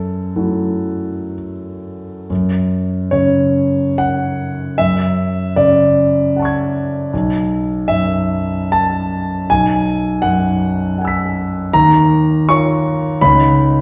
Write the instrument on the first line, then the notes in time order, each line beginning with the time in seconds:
grand piano
Already playing: F#2 A4
0.36 F#3 A3 E4 F#4
2.30 F#2
3.11 C#3 C#5
3.98 F#5
4.78 F#2 E5
5.56 C#3 D5
6.36 F#5 A5
6.42 C#6 G#6
7.13 B1
7.88 F#2 E5
8.72 A5
9.50 B1 G#5
10.22 F#2 F#5
10.98 F#5 G#5
11.05 E6 B6
11.73 D#2 A#5
12.49 F4 C#5 C#6
13.21 C#2 D#4 C#5 B5